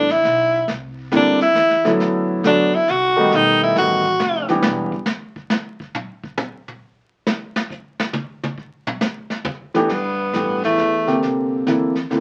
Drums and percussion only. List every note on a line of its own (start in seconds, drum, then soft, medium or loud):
0.09 snare soft
0.24 kick soft
0.24 snare soft
0.68 brush sweep soft
0.68 kick soft
0.68 snare soft
1.12 snare medium
1.12 hi-hat pedal medium
1.40 snare soft
1.55 kick soft
1.55 snare medium
1.55 hi-hat pedal medium
1.70 snare soft
1.85 snare soft
2.00 brush sweep soft
2.00 kick soft
2.00 snare soft
2.44 kick soft
2.44 snare medium
2.44 hi-hat pedal medium
2.73 kick medium
2.88 kick soft
2.88 snare soft
3.32 brush sweep medium
3.32 kick soft
3.32 snare soft
3.76 snare medium
3.76 hi-hat pedal medium
4.05 kick medium
4.20 snare medium
4.20 hi-hat pedal medium
4.48 snare soft
4.62 snare loud
4.92 kick medium
5.06 snare loud
5.06 hi-hat pedal medium
5.36 kick medium
5.50 snare medium
5.80 kick medium
5.95 mid tom medium
6.24 kick medium
6.38 hi-hat pedal medium
6.38 mid tom loud
6.68 mid tom soft
7.27 snare loud
7.56 snare loud
7.70 kick medium
7.70 hi-hat pedal medium
8.00 snare loud
8.13 high tom loud
8.44 high tom loud
8.58 kick medium
8.87 mid tom loud
9.01 snare loud
9.01 hi-hat pedal medium
9.30 snare medium
9.45 floor tom loud
9.75 snare medium
9.89 brush sweep soft
9.89 kick medium
9.89 snare soft
9.89 crash medium
10.33 snare medium
10.33 hi-hat pedal medium
10.64 snare soft
10.78 kick soft
10.78 snare soft
11.07 snare soft
11.22 brush sweep soft
11.22 kick soft
11.22 snare soft
11.67 kick soft
11.67 snare medium
11.67 hi-hat pedal medium
11.95 snare soft
12.11 kick soft
12.11 snare soft